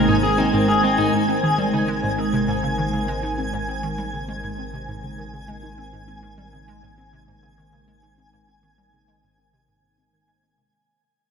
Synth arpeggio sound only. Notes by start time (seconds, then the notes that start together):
0.08 G#2
0.23 C4
0.38 C4
0.53 G#2
0.68 G#3
0.83 G#3
0.98 G#2
1.13 G#2
1.28 C4
1.43 D#3
1.58 G3
1.73 C#3
1.88 G#3
2.03 G#2
2.18 C4
2.33 C3
2.48 G#2
2.63 C#3
2.78 D#3
2.93 C#3
3.08 G#3
3.23 D#4
3.38 C4
3.53 G#2
3.68 C4
3.83 D#3
3.98 G3
4.14 C#3
4.28 G#3
4.44 G#2
4.58 C4
4.73 C3
4.88 G#2
5.03 C#3
5.18 D#3
5.34 C#3
5.48 G#3
5.63 D#4
5.78 C4
5.93 G#2
6.08 C4
6.23 D#3
6.38 G3
6.53 C#3
6.68 G#3
6.83 G#2
6.98 C4
7.13 C3
7.28 G#2
7.43 C#3
7.58 D#3
7.73 C#3
7.88 G#3
8.03 D#4
8.18 C4
8.33 G#2
8.48 C4
8.63 D#3
8.78 G3
8.93 C#3
9.08 G#3
9.23 G#2
9.38 C4
9.53 C3
9.68 G#2
9.83 G#2
9.98 C4
10.13 D#3
10.28 G#3
10.43 G#3
10.58 C3